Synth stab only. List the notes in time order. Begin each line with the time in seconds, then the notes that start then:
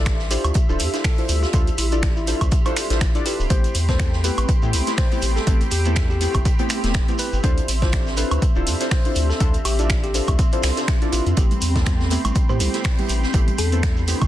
Already playing: D4 E4 F4 A4 D5
0.30 D4 E4 F4 A4 C5
0.69 D4 E4 F4 A4 C5
0.93 D4 E4 F4 A4 C5
1.18 D4 E4 F4 A4 C5
1.53 D4 E4 F4 A4 C5
1.92 D4 E4 F4 A4 D5
2.27 D4 E4 F4 A4 C5
2.66 D4 E4 F4 A4 C5
2.90 D4 E4 F4 A4 C5
3.15 D4 E4 F4 A4 D5
3.25 D4 E4 F4 A4 B4
3.50 A3 B3 C4 E4 G4
3.88 A3 B3 C4 E4 A4
4.24 A3 B3 C4 E4 G4
4.62 A3 B3 C4 E4 G4
4.87 A3 B3 C4 E4 G4
5.11 A3 B3 C4 E4 G4
5.47 A3 B3 C4 E4 G4
5.85 A3 B3 C4 E4 A4
6.21 A3 B3 C4 E4 G4
6.59 A3 B3 C4 E4 G4
6.84 A3 B3 C4 E4 G4
7.08 A3 B3 C4 E4 G4
7.44 D4 E4 F4 A4 C5
7.82 D4 E4 F4 A4 D5
8.17 D4 E4 F4 A4 C5
8.56 D4 E4 F4 A4 C5
8.80 D4 E4 F4 A4 C5
9.05 D4 E4 F4 A4 C5
9.40 D4 E4 F4 A4 C5
9.79 D4 E4 F4 A4 D5
10.14 D4 E4 F4 A4 C5
10.52 D4 E4 F4 A4 C5
10.77 D4 E4 F4 A4 C5
11.02 D4 E4 F4 A4 D5
11.12 D4 E4 F4 A4 B4
11.37 A3 B3 C4 E4 G4
11.75 A3 B3 C4 E4 A4
12.11 A3 B3 C4 E4 G4
12.49 A3 B3 C4 E4 G4
12.74 A3 B3 C4 E4 G4
12.98 A3 B3 C4 E4 G4
13.34 A3 B3 C4 E4 G4
13.72 A3 B3 C4 E4 A4
14.08 A3 B3 C4 E4 G4